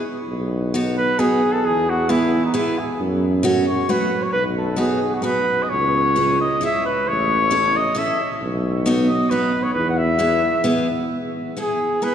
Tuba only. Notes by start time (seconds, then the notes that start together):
0.27 B1
1.65 E2
3.00 F#2
4.33 B1
5.70 C#2
7.06 A1
8.41 B1
9.75 E2